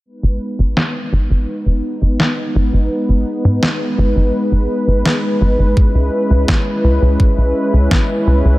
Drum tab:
SD |--o---o-|--o---o-|--o---o-|
BD |--------|--------|o-o-o-o-|